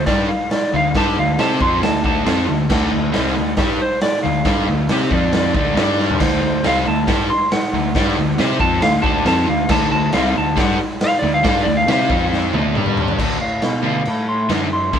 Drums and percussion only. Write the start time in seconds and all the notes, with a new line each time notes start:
0.06 kick, snare, open hi-hat
0.51 snare, open hi-hat
0.95 kick, snare, open hi-hat
1.38 snare, open hi-hat
1.61 kick
1.83 snare, open hi-hat
2.04 kick
2.26 snare, open hi-hat
2.70 kick, snare, crash
3.13 snare, open hi-hat
3.56 kick, snare, open hi-hat
4.01 snare, open hi-hat
4.45 kick, snare, open hi-hat
4.89 snare, open hi-hat
5.11 kick
5.32 snare, open hi-hat
5.55 kick
5.77 snare, open hi-hat
6.00 snare
6.10 floor tom
6.20 kick, snare, open hi-hat, crash
6.64 snare, open hi-hat
7.07 kick, snare, open hi-hat
7.51 snare, open hi-hat
7.95 kick, snare, open hi-hat
8.38 snare, open hi-hat
8.60 kick
8.82 snare, open hi-hat
9.04 kick
9.25 snare, open hi-hat
9.69 kick, snare, crash
10.12 snare, open hi-hat
10.57 kick, snare, open hi-hat
11.00 snare, open hi-hat
11.44 kick, snare, open hi-hat
11.88 snare, open hi-hat
12.10 kick
12.33 snare
12.54 high tom
12.75 mid tom
12.86 mid tom
12.97 floor tom
13.08 floor tom
13.19 kick, crash
13.62 snare, crash
14.05 crash
14.49 snare, crash
14.93 kick, crash